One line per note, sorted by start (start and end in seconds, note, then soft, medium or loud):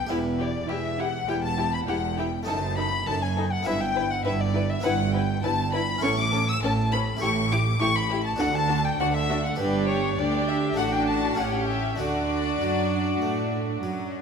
0.00 0.10 G5 medium
0.00 0.12 G5 medium
0.07 0.62 E1 medium
0.07 0.59 E2 medium
0.07 0.63 E2 medium
0.07 0.18 E4 medium
0.07 2.42 G4 medium
0.07 0.16 G4 medium
0.07 0.43 B4 medium
0.07 2.43 E5 medium
0.11 0.19 B4 medium
0.39 0.48 E4 soft
0.39 0.47 G4 medium
0.39 0.69 D5 medium
0.39 0.70 D5 medium
0.68 1.22 E1 medium
0.68 1.19 E2 medium
0.68 1.22 E2 medium
0.68 0.77 E4 medium
0.68 0.76 G4 medium
0.68 1.00 E5 medium
0.68 1.02 E5 medium
0.98 1.06 E4 medium
0.98 1.07 G4 medium
0.98 1.29 F#5 loud
0.98 1.31 F#5 medium
1.28 1.82 E1 medium
1.28 1.78 E2 medium
1.28 1.82 E2 medium
1.28 1.36 E4 medium
1.28 1.36 G4 medium
1.28 1.35 G5 loud
1.28 1.44 G5 medium
1.44 1.73 A5 loud
1.44 1.73 A5 medium
1.57 1.65 E4 medium
1.57 1.66 G4 medium
1.73 1.88 B5 medium
1.73 1.80 B5 medium
1.87 2.41 E1 medium
1.87 2.38 E2 medium
1.87 2.41 E2 medium
1.87 1.96 E4 medium
1.87 1.95 G4 medium
1.87 2.17 F#5 loud
1.87 1.97 F#5 medium
2.18 2.26 E4 medium
2.18 2.26 G4 medium
2.18 2.48 G5 medium
2.18 2.28 G5 medium
2.43 3.60 A3 medium
2.43 3.61 D#4 soft
2.43 2.54 A4 medium
2.43 3.62 D#5 medium
2.47 3.00 F#1 medium
2.47 3.00 F#2 medium
2.47 2.97 F#2 medium
2.47 2.55 D#4 medium
2.47 2.77 A5 loud
2.47 2.57 A5 medium
2.77 2.85 D#4 medium
2.77 2.85 A4 medium
2.77 3.08 B5 medium
2.77 3.08 B5 loud
3.07 3.59 F#1 medium
3.07 3.60 F#2 medium
3.07 3.57 F#2 medium
3.07 3.16 D#4 medium
3.07 3.15 A4 medium
3.07 3.24 A5 medium
3.07 3.22 A5 loud
3.22 3.53 G#5 medium
3.22 3.31 G#5 loud
3.38 3.46 D#4 medium
3.38 3.46 A4 medium
3.52 3.68 F#5 medium
3.52 3.67 F#5 medium
3.63 4.18 G2 medium
3.63 4.16 G2 medium
3.63 4.79 B3 medium
3.63 4.80 E4 medium
3.63 3.74 E4 medium
3.63 4.81 B4 medium
3.63 3.74 B4 medium
3.63 3.82 E5 medium
3.67 4.19 G1 medium
3.67 3.81 E5 loud
3.81 4.13 G5 loud
3.81 4.11 G5 loud
3.95 4.04 E4 medium
3.95 4.03 B4 medium
4.11 4.25 F#5 medium
4.11 4.26 F#5 medium
4.24 4.78 G1 medium
4.24 4.75 G2 medium
4.24 4.78 G2 medium
4.24 4.34 E4 medium
4.24 4.32 B4 medium
4.24 4.42 E5 medium
4.24 4.32 E5 loud
4.40 4.69 D5 medium
4.40 4.72 D5 medium
4.54 4.63 E4 medium
4.54 4.62 B4 medium
4.70 4.85 E5 loud
4.70 4.84 E5 medium
4.80 5.97 B3 medium
4.80 5.98 E4 medium
4.80 4.92 E4 medium
4.80 5.99 B4 medium
4.80 4.92 B4 medium
4.80 5.14 F#5 loud
4.84 5.37 G1 loud
4.84 5.34 G2 medium
4.84 5.37 G2 medium
4.84 4.93 F#5 medium
5.14 5.22 E4 medium
5.14 5.22 B4 medium
5.14 5.44 G5 medium
5.14 5.46 G5 medium
5.43 5.96 G1 medium
5.43 5.94 G2 medium
5.43 5.97 G2 medium
5.43 5.51 E4 medium
5.43 5.51 B4 medium
5.43 5.73 A5 loud
5.43 5.74 A5 medium
5.73 5.82 E4 medium
5.73 5.81 B4 medium
5.73 6.03 B5 loud
5.73 6.03 B5 medium
5.98 7.16 C#4 medium
5.98 7.15 E4 medium
5.98 7.17 A4 medium
6.03 6.55 A1 loud
6.03 6.52 A2 medium
6.03 6.56 A2 medium
6.03 6.11 C#4 medium
6.03 6.11 A4 medium
6.03 6.18 C#6 loud
6.03 6.10 C#6 loud
6.17 6.47 D6 loud
6.17 6.50 D6 medium
6.32 6.41 C#4 medium
6.32 6.40 A4 medium
6.48 6.62 E6 loud
6.48 6.63 E6 medium
6.62 7.14 A1 medium
6.62 7.12 A2 medium
6.62 7.15 A2 medium
6.62 6.71 C#4 medium
6.62 6.71 A4 medium
6.62 6.71 A5 loud
6.62 6.94 A5 medium
6.92 7.01 C#4 medium
6.92 7.00 A4 medium
6.92 7.21 B5 medium
6.92 7.01 B5 loud
7.17 8.34 E4 medium
7.17 8.35 G4 medium
7.17 8.36 A4 medium
7.21 7.74 A1 medium
7.21 7.71 A2 medium
7.21 7.74 A2 loud
7.21 7.30 E4 medium
7.21 7.29 G4 medium
7.21 7.30 C#6 medium
7.21 7.51 C#6 loud
7.51 7.59 E4 medium
7.51 7.59 G4 medium
7.51 7.81 D6 loud
7.51 7.60 D6 medium
7.80 8.33 A1 medium
7.80 8.30 A2 medium
7.80 8.33 A2 medium
7.80 7.89 E4 medium
7.80 7.88 G4 medium
7.80 7.95 C#6 loud
7.80 7.97 C#6 loud
7.95 8.25 B5 loud
7.95 8.23 B5 medium
8.10 8.19 E4 medium
8.10 8.18 G4 medium
8.24 8.42 A5 medium
8.24 8.32 A5 loud
8.36 9.54 D4 medium
8.36 8.47 D4 medium
8.36 9.55 F#4 medium
8.36 8.48 F#4 medium
8.36 9.55 A4 medium
8.40 8.93 D2 loud
8.40 8.93 D3 medium
8.40 8.90 D3 medium
8.40 8.56 F#5 loud
8.40 8.47 F#5 loud
8.55 8.86 A5 loud
8.55 8.85 A5 loud
8.68 8.76 D4 medium
8.68 8.77 F#4 medium
8.85 9.02 G5 medium
8.85 9.00 G5 loud
8.99 9.52 D2 medium
8.99 9.52 D3 medium
8.99 9.50 D3 medium
8.99 9.07 D4 medium
8.99 9.08 F#4 medium
8.99 9.16 F#5 medium
8.99 9.06 F#5 loud
9.14 9.44 E5 medium
9.14 9.44 E5 loud
9.29 9.37 D4 medium
9.29 9.37 F#4 medium
9.45 9.60 F#5 medium
9.45 9.59 F#5 medium
9.56 10.15 G1 medium
9.56 10.15 G2 medium
9.56 10.73 D4 medium
9.56 10.14 D4 medium
9.56 10.73 G4 medium
9.56 10.15 G4 medium
9.60 10.15 G2 loud
9.60 9.89 B4 medium
9.89 10.19 C#5 medium
9.89 10.20 C#5 medium
10.18 10.74 D2 medium
10.18 10.77 D2 medium
10.18 10.78 D2 medium
10.18 10.76 D4 medium
10.18 10.77 G4 medium
10.18 10.48 D5 medium
10.18 10.50 D5 medium
10.47 10.55 E5 loud
10.47 10.79 E5 medium
10.74 11.33 A3 medium
10.74 11.35 D4 medium
10.74 11.37 D4 medium
10.74 11.36 F#4 medium
10.74 11.38 F#4 medium
10.74 10.94 F#5 loud
10.74 10.84 F#5 loud
10.78 11.37 A1 medium
10.78 11.34 A2 medium
10.78 11.38 A2 medium
10.92 11.09 G5 medium
10.92 11.09 G5 loud
11.07 11.39 A5 medium
11.07 11.38 A5 loud
11.34 11.95 A3 medium
11.34 11.96 C#4 medium
11.34 11.97 G4 soft
11.34 11.68 F#5 medium
11.38 11.98 A1 medium
11.38 11.95 A2 medium
11.38 11.98 A2 medium
11.38 12.00 C#4 medium
11.38 11.99 G4 medium
11.38 11.47 F#5 medium
11.68 12.01 E5 medium
11.68 11.99 E5 medium
11.96 12.59 D2 medium
11.96 13.21 A3 soft
11.96 14.22 D4 soft
11.96 14.19 F#4 medium
11.96 14.22 F#4 soft
11.96 14.08 D5 loud
12.00 12.57 D3 medium
12.00 12.60 D3 medium
12.00 14.19 D4 medium
12.00 14.13 D5 medium
12.60 13.20 F#2 medium
12.60 13.20 F#3 medium
12.60 13.18 F#3 medium
13.21 13.81 A2 medium
13.21 13.78 A3 medium
13.21 13.82 A3 medium
13.82 14.22 F#2 medium
13.82 14.22 F#3 medium